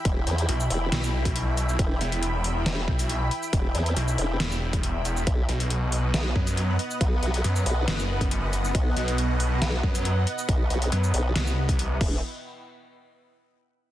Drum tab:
CC |----------------|----------------|----------------|----------------|
HH |x-xxx-o-x--xx-x-|x-xxx-o-x--xx-x-|x-xxx-o-x--xx-x-|x-xxx-o-x--xx-x-|
SH |-----x---x----xx|-----------x---x|-----x---x----xx|-----------x---x|
SD |--------o-------|--------o-------|--------o-------|--------o-------|
BD |o----------o----|o---------o-----|o----------o----|o---------o-----|

CC |----------------|----------------|--------------x-|----------------|
HH |x-xxx-o-x--xx-x-|x-xxx-o-x--xx-x-|x-xxx-o-x--xx---|----------------|
SH |-----x---x----xx|-----------x---x|-----x---x------|----------------|
SD |--------o-------|--------o-------|--------o-------|----------------|
BD |o----------o----|o---------o-----|o----------o--o-|----------------|